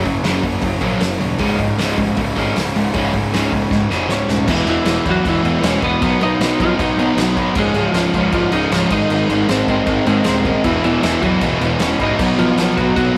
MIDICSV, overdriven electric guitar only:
0, 0, Header, 1, 2, 480
1, 0, Start_track
1, 0, Tempo, 385109
1, 1745, Time_signature, 4, 2, 24, 8
1, 16423, End_track
2, 0, Start_track
2, 0, Title_t, "Overdriven electric guitar"
2, 0, Program_c, 0, 29
2, 65, Note_on_c, 0, 42, 73
2, 70, Note_on_c, 0, 49, 80
2, 279, Note_off_c, 0, 42, 0
2, 286, Note_off_c, 0, 49, 0
2, 294, Note_on_c, 0, 42, 86
2, 302, Note_on_c, 0, 49, 97
2, 310, Note_on_c, 0, 54, 93
2, 512, Note_off_c, 0, 42, 0
2, 515, Note_off_c, 0, 49, 0
2, 527, Note_on_c, 0, 42, 79
2, 530, Note_on_c, 0, 49, 69
2, 535, Note_off_c, 0, 54, 0
2, 753, Note_off_c, 0, 42, 0
2, 755, Note_off_c, 0, 49, 0
2, 768, Note_on_c, 0, 42, 72
2, 773, Note_on_c, 0, 49, 83
2, 982, Note_off_c, 0, 42, 0
2, 996, Note_off_c, 0, 49, 0
2, 997, Note_on_c, 0, 42, 90
2, 1009, Note_on_c, 0, 49, 100
2, 1018, Note_on_c, 0, 54, 116
2, 1237, Note_off_c, 0, 42, 0
2, 1240, Note_off_c, 0, 49, 0
2, 1247, Note_off_c, 0, 54, 0
2, 1249, Note_on_c, 0, 42, 72
2, 1255, Note_on_c, 0, 49, 83
2, 1473, Note_off_c, 0, 42, 0
2, 1476, Note_off_c, 0, 49, 0
2, 1490, Note_on_c, 0, 42, 81
2, 1496, Note_on_c, 0, 49, 82
2, 1713, Note_off_c, 0, 42, 0
2, 1716, Note_off_c, 0, 49, 0
2, 1724, Note_on_c, 0, 37, 88
2, 1741, Note_on_c, 0, 44, 90
2, 1744, Note_on_c, 0, 49, 100
2, 1959, Note_off_c, 0, 37, 0
2, 1968, Note_off_c, 0, 44, 0
2, 1969, Note_off_c, 0, 49, 0
2, 1974, Note_on_c, 0, 37, 73
2, 1981, Note_on_c, 0, 44, 86
2, 2194, Note_off_c, 0, 37, 0
2, 2198, Note_off_c, 0, 44, 0
2, 2217, Note_on_c, 0, 37, 84
2, 2220, Note_on_c, 0, 44, 94
2, 2228, Note_on_c, 0, 49, 85
2, 2445, Note_off_c, 0, 37, 0
2, 2446, Note_off_c, 0, 44, 0
2, 2451, Note_off_c, 0, 49, 0
2, 2465, Note_on_c, 0, 37, 73
2, 2471, Note_on_c, 0, 44, 78
2, 2679, Note_off_c, 0, 37, 0
2, 2682, Note_off_c, 0, 44, 0
2, 2705, Note_on_c, 0, 37, 80
2, 2708, Note_on_c, 0, 44, 84
2, 2919, Note_off_c, 0, 37, 0
2, 2920, Note_off_c, 0, 44, 0
2, 2946, Note_on_c, 0, 37, 100
2, 2956, Note_on_c, 0, 44, 104
2, 2965, Note_on_c, 0, 49, 119
2, 3169, Note_off_c, 0, 37, 0
2, 3174, Note_off_c, 0, 44, 0
2, 3178, Note_off_c, 0, 49, 0
2, 3189, Note_on_c, 0, 37, 73
2, 3194, Note_on_c, 0, 44, 87
2, 3401, Note_off_c, 0, 37, 0
2, 3404, Note_off_c, 0, 44, 0
2, 3420, Note_on_c, 0, 37, 69
2, 3424, Note_on_c, 0, 44, 84
2, 3636, Note_off_c, 0, 37, 0
2, 3638, Note_off_c, 0, 44, 0
2, 3650, Note_on_c, 0, 37, 86
2, 3653, Note_on_c, 0, 44, 92
2, 3665, Note_on_c, 0, 49, 94
2, 3881, Note_off_c, 0, 37, 0
2, 3882, Note_off_c, 0, 44, 0
2, 3888, Note_off_c, 0, 49, 0
2, 3903, Note_on_c, 0, 37, 68
2, 3907, Note_on_c, 0, 44, 80
2, 4117, Note_off_c, 0, 37, 0
2, 4120, Note_off_c, 0, 44, 0
2, 4140, Note_on_c, 0, 37, 78
2, 4155, Note_on_c, 0, 44, 86
2, 4164, Note_on_c, 0, 49, 91
2, 4366, Note_off_c, 0, 37, 0
2, 4373, Note_off_c, 0, 44, 0
2, 4377, Note_off_c, 0, 49, 0
2, 4385, Note_on_c, 0, 37, 63
2, 4394, Note_on_c, 0, 44, 77
2, 4598, Note_off_c, 0, 37, 0
2, 4603, Note_off_c, 0, 44, 0
2, 4628, Note_on_c, 0, 37, 69
2, 4637, Note_on_c, 0, 44, 84
2, 4840, Note_off_c, 0, 37, 0
2, 4844, Note_off_c, 0, 44, 0
2, 4864, Note_on_c, 0, 37, 94
2, 4868, Note_on_c, 0, 44, 105
2, 4879, Note_on_c, 0, 49, 110
2, 5088, Note_off_c, 0, 37, 0
2, 5090, Note_off_c, 0, 44, 0
2, 5095, Note_off_c, 0, 49, 0
2, 5121, Note_on_c, 0, 37, 68
2, 5128, Note_on_c, 0, 44, 77
2, 5326, Note_off_c, 0, 37, 0
2, 5330, Note_off_c, 0, 44, 0
2, 5348, Note_on_c, 0, 37, 64
2, 5352, Note_on_c, 0, 44, 81
2, 5560, Note_off_c, 0, 37, 0
2, 5562, Note_off_c, 0, 44, 0
2, 5571, Note_on_c, 0, 40, 89
2, 5582, Note_on_c, 0, 47, 103
2, 5588, Note_on_c, 0, 52, 118
2, 5790, Note_off_c, 0, 40, 0
2, 5797, Note_off_c, 0, 47, 0
2, 5805, Note_on_c, 0, 40, 89
2, 5808, Note_off_c, 0, 52, 0
2, 5812, Note_on_c, 0, 47, 87
2, 5823, Note_on_c, 0, 52, 99
2, 6026, Note_off_c, 0, 40, 0
2, 6032, Note_off_c, 0, 47, 0
2, 6041, Note_on_c, 0, 40, 91
2, 6044, Note_off_c, 0, 52, 0
2, 6047, Note_on_c, 0, 47, 96
2, 6059, Note_on_c, 0, 52, 107
2, 6268, Note_off_c, 0, 40, 0
2, 6278, Note_off_c, 0, 47, 0
2, 6282, Note_off_c, 0, 52, 0
2, 6283, Note_on_c, 0, 40, 87
2, 6293, Note_on_c, 0, 47, 89
2, 6297, Note_on_c, 0, 52, 98
2, 6510, Note_off_c, 0, 40, 0
2, 6522, Note_off_c, 0, 47, 0
2, 6524, Note_off_c, 0, 52, 0
2, 6525, Note_on_c, 0, 40, 95
2, 6537, Note_on_c, 0, 47, 105
2, 6539, Note_on_c, 0, 52, 111
2, 6743, Note_off_c, 0, 40, 0
2, 6752, Note_off_c, 0, 47, 0
2, 6757, Note_on_c, 0, 40, 93
2, 6760, Note_off_c, 0, 52, 0
2, 6767, Note_on_c, 0, 47, 98
2, 6775, Note_on_c, 0, 52, 99
2, 6981, Note_off_c, 0, 40, 0
2, 6989, Note_off_c, 0, 47, 0
2, 6996, Note_off_c, 0, 52, 0
2, 6996, Note_on_c, 0, 40, 94
2, 7004, Note_on_c, 0, 47, 108
2, 7011, Note_on_c, 0, 52, 104
2, 7233, Note_off_c, 0, 40, 0
2, 7243, Note_off_c, 0, 47, 0
2, 7247, Note_off_c, 0, 52, 0
2, 7248, Note_on_c, 0, 40, 89
2, 7258, Note_on_c, 0, 47, 88
2, 7262, Note_on_c, 0, 52, 107
2, 7472, Note_off_c, 0, 47, 0
2, 7479, Note_off_c, 0, 40, 0
2, 7487, Note_off_c, 0, 52, 0
2, 7487, Note_on_c, 0, 47, 98
2, 7503, Note_on_c, 0, 54, 116
2, 7504, Note_on_c, 0, 59, 101
2, 7728, Note_off_c, 0, 47, 0
2, 7733, Note_off_c, 0, 54, 0
2, 7740, Note_off_c, 0, 59, 0
2, 7743, Note_on_c, 0, 47, 91
2, 7748, Note_on_c, 0, 54, 99
2, 7754, Note_on_c, 0, 59, 99
2, 7967, Note_off_c, 0, 47, 0
2, 7973, Note_off_c, 0, 54, 0
2, 7980, Note_off_c, 0, 59, 0
2, 7982, Note_on_c, 0, 47, 89
2, 7988, Note_on_c, 0, 54, 107
2, 7995, Note_on_c, 0, 59, 102
2, 8216, Note_off_c, 0, 47, 0
2, 8220, Note_off_c, 0, 54, 0
2, 8222, Note_off_c, 0, 59, 0
2, 8230, Note_on_c, 0, 47, 93
2, 8235, Note_on_c, 0, 54, 97
2, 8237, Note_on_c, 0, 59, 94
2, 8454, Note_off_c, 0, 47, 0
2, 8458, Note_off_c, 0, 54, 0
2, 8465, Note_off_c, 0, 59, 0
2, 8469, Note_on_c, 0, 47, 92
2, 8473, Note_on_c, 0, 54, 99
2, 8480, Note_on_c, 0, 59, 116
2, 8689, Note_off_c, 0, 47, 0
2, 8697, Note_off_c, 0, 54, 0
2, 8704, Note_off_c, 0, 59, 0
2, 8704, Note_on_c, 0, 47, 94
2, 8712, Note_on_c, 0, 54, 94
2, 8719, Note_on_c, 0, 59, 113
2, 8931, Note_off_c, 0, 47, 0
2, 8944, Note_off_c, 0, 54, 0
2, 8946, Note_on_c, 0, 47, 97
2, 8950, Note_off_c, 0, 59, 0
2, 8959, Note_on_c, 0, 54, 103
2, 8964, Note_on_c, 0, 59, 104
2, 9163, Note_off_c, 0, 47, 0
2, 9171, Note_off_c, 0, 54, 0
2, 9178, Note_on_c, 0, 47, 91
2, 9179, Note_off_c, 0, 59, 0
2, 9185, Note_on_c, 0, 54, 94
2, 9194, Note_on_c, 0, 59, 101
2, 9405, Note_off_c, 0, 47, 0
2, 9409, Note_off_c, 0, 54, 0
2, 9413, Note_off_c, 0, 59, 0
2, 9419, Note_on_c, 0, 37, 92
2, 9427, Note_on_c, 0, 44, 111
2, 9433, Note_on_c, 0, 49, 107
2, 9636, Note_off_c, 0, 37, 0
2, 9651, Note_off_c, 0, 44, 0
2, 9651, Note_on_c, 0, 37, 95
2, 9652, Note_off_c, 0, 49, 0
2, 9666, Note_on_c, 0, 44, 98
2, 9667, Note_on_c, 0, 49, 107
2, 9877, Note_off_c, 0, 37, 0
2, 9885, Note_off_c, 0, 44, 0
2, 9890, Note_off_c, 0, 49, 0
2, 9892, Note_on_c, 0, 37, 99
2, 9900, Note_on_c, 0, 44, 106
2, 9905, Note_on_c, 0, 49, 98
2, 10126, Note_off_c, 0, 37, 0
2, 10131, Note_off_c, 0, 44, 0
2, 10141, Note_off_c, 0, 49, 0
2, 10141, Note_on_c, 0, 37, 87
2, 10146, Note_on_c, 0, 44, 96
2, 10156, Note_on_c, 0, 49, 104
2, 10360, Note_off_c, 0, 37, 0
2, 10365, Note_off_c, 0, 44, 0
2, 10369, Note_off_c, 0, 49, 0
2, 10375, Note_on_c, 0, 37, 108
2, 10380, Note_on_c, 0, 44, 102
2, 10384, Note_on_c, 0, 49, 105
2, 10590, Note_off_c, 0, 37, 0
2, 10604, Note_off_c, 0, 44, 0
2, 10604, Note_off_c, 0, 49, 0
2, 10605, Note_on_c, 0, 37, 97
2, 10619, Note_on_c, 0, 44, 100
2, 10619, Note_on_c, 0, 49, 106
2, 10836, Note_off_c, 0, 37, 0
2, 10844, Note_off_c, 0, 44, 0
2, 10851, Note_off_c, 0, 49, 0
2, 10851, Note_on_c, 0, 37, 96
2, 10859, Note_on_c, 0, 44, 107
2, 10866, Note_on_c, 0, 49, 107
2, 11083, Note_off_c, 0, 37, 0
2, 11084, Note_off_c, 0, 44, 0
2, 11091, Note_off_c, 0, 49, 0
2, 11099, Note_on_c, 0, 44, 104
2, 11104, Note_on_c, 0, 51, 119
2, 11109, Note_on_c, 0, 56, 114
2, 11314, Note_off_c, 0, 44, 0
2, 11322, Note_off_c, 0, 51, 0
2, 11329, Note_on_c, 0, 44, 104
2, 11337, Note_on_c, 0, 51, 108
2, 11342, Note_off_c, 0, 56, 0
2, 11347, Note_on_c, 0, 56, 101
2, 11557, Note_off_c, 0, 44, 0
2, 11560, Note_off_c, 0, 51, 0
2, 11572, Note_on_c, 0, 44, 90
2, 11575, Note_on_c, 0, 51, 93
2, 11580, Note_off_c, 0, 56, 0
2, 11585, Note_on_c, 0, 56, 98
2, 11795, Note_off_c, 0, 44, 0
2, 11807, Note_off_c, 0, 51, 0
2, 11810, Note_on_c, 0, 44, 98
2, 11819, Note_off_c, 0, 56, 0
2, 11822, Note_on_c, 0, 51, 104
2, 11824, Note_on_c, 0, 56, 103
2, 12035, Note_off_c, 0, 44, 0
2, 12050, Note_off_c, 0, 51, 0
2, 12050, Note_on_c, 0, 44, 88
2, 12058, Note_off_c, 0, 56, 0
2, 12063, Note_on_c, 0, 56, 100
2, 12065, Note_on_c, 0, 51, 95
2, 12281, Note_off_c, 0, 44, 0
2, 12289, Note_off_c, 0, 51, 0
2, 12296, Note_off_c, 0, 56, 0
2, 12296, Note_on_c, 0, 44, 101
2, 12304, Note_on_c, 0, 51, 95
2, 12311, Note_on_c, 0, 56, 95
2, 12519, Note_off_c, 0, 44, 0
2, 12522, Note_off_c, 0, 51, 0
2, 12525, Note_off_c, 0, 56, 0
2, 12534, Note_on_c, 0, 44, 91
2, 12537, Note_on_c, 0, 51, 101
2, 12540, Note_on_c, 0, 56, 105
2, 12763, Note_off_c, 0, 44, 0
2, 12770, Note_off_c, 0, 51, 0
2, 12778, Note_on_c, 0, 44, 90
2, 12785, Note_on_c, 0, 51, 95
2, 12786, Note_off_c, 0, 56, 0
2, 12801, Note_on_c, 0, 56, 110
2, 13011, Note_off_c, 0, 44, 0
2, 13016, Note_off_c, 0, 51, 0
2, 13025, Note_off_c, 0, 56, 0
2, 13026, Note_on_c, 0, 44, 88
2, 13031, Note_on_c, 0, 51, 90
2, 13040, Note_on_c, 0, 56, 92
2, 13249, Note_off_c, 0, 44, 0
2, 13254, Note_off_c, 0, 51, 0
2, 13254, Note_on_c, 0, 40, 107
2, 13259, Note_off_c, 0, 56, 0
2, 13268, Note_on_c, 0, 47, 101
2, 13271, Note_on_c, 0, 52, 118
2, 13487, Note_off_c, 0, 40, 0
2, 13493, Note_off_c, 0, 47, 0
2, 13502, Note_on_c, 0, 40, 91
2, 13503, Note_off_c, 0, 52, 0
2, 13508, Note_on_c, 0, 47, 94
2, 13518, Note_on_c, 0, 52, 88
2, 13724, Note_off_c, 0, 40, 0
2, 13735, Note_off_c, 0, 47, 0
2, 13737, Note_off_c, 0, 52, 0
2, 13739, Note_on_c, 0, 40, 89
2, 13750, Note_on_c, 0, 47, 93
2, 13752, Note_on_c, 0, 52, 101
2, 13966, Note_off_c, 0, 40, 0
2, 13969, Note_off_c, 0, 47, 0
2, 13981, Note_on_c, 0, 40, 95
2, 13982, Note_off_c, 0, 52, 0
2, 13984, Note_on_c, 0, 47, 82
2, 13997, Note_on_c, 0, 52, 104
2, 14206, Note_off_c, 0, 40, 0
2, 14217, Note_off_c, 0, 47, 0
2, 14221, Note_on_c, 0, 40, 99
2, 14224, Note_off_c, 0, 52, 0
2, 14232, Note_on_c, 0, 47, 104
2, 14239, Note_on_c, 0, 52, 118
2, 14437, Note_off_c, 0, 40, 0
2, 14447, Note_off_c, 0, 47, 0
2, 14452, Note_on_c, 0, 40, 95
2, 14455, Note_off_c, 0, 52, 0
2, 14462, Note_on_c, 0, 47, 111
2, 14470, Note_on_c, 0, 52, 105
2, 14681, Note_off_c, 0, 40, 0
2, 14686, Note_off_c, 0, 47, 0
2, 14696, Note_on_c, 0, 40, 98
2, 14700, Note_off_c, 0, 52, 0
2, 14701, Note_on_c, 0, 47, 98
2, 14715, Note_on_c, 0, 52, 99
2, 14927, Note_off_c, 0, 40, 0
2, 14939, Note_off_c, 0, 47, 0
2, 14941, Note_on_c, 0, 40, 88
2, 14943, Note_off_c, 0, 52, 0
2, 14954, Note_on_c, 0, 47, 93
2, 14958, Note_on_c, 0, 52, 107
2, 15170, Note_off_c, 0, 40, 0
2, 15177, Note_off_c, 0, 47, 0
2, 15178, Note_off_c, 0, 52, 0
2, 15202, Note_on_c, 0, 47, 101
2, 15203, Note_on_c, 0, 54, 100
2, 15211, Note_on_c, 0, 59, 109
2, 15414, Note_off_c, 0, 47, 0
2, 15423, Note_off_c, 0, 54, 0
2, 15429, Note_off_c, 0, 59, 0
2, 15429, Note_on_c, 0, 47, 86
2, 15438, Note_on_c, 0, 54, 92
2, 15444, Note_on_c, 0, 59, 96
2, 15661, Note_off_c, 0, 47, 0
2, 15671, Note_off_c, 0, 54, 0
2, 15676, Note_on_c, 0, 47, 94
2, 15679, Note_off_c, 0, 59, 0
2, 15686, Note_on_c, 0, 54, 100
2, 15694, Note_on_c, 0, 59, 107
2, 15902, Note_off_c, 0, 47, 0
2, 15914, Note_off_c, 0, 54, 0
2, 15916, Note_off_c, 0, 59, 0
2, 15917, Note_on_c, 0, 47, 87
2, 15929, Note_on_c, 0, 54, 92
2, 15931, Note_on_c, 0, 59, 91
2, 16145, Note_off_c, 0, 47, 0
2, 16155, Note_off_c, 0, 54, 0
2, 16160, Note_on_c, 0, 47, 102
2, 16161, Note_off_c, 0, 59, 0
2, 16170, Note_on_c, 0, 54, 102
2, 16176, Note_on_c, 0, 59, 115
2, 16388, Note_off_c, 0, 47, 0
2, 16401, Note_off_c, 0, 54, 0
2, 16405, Note_off_c, 0, 59, 0
2, 16423, End_track
0, 0, End_of_file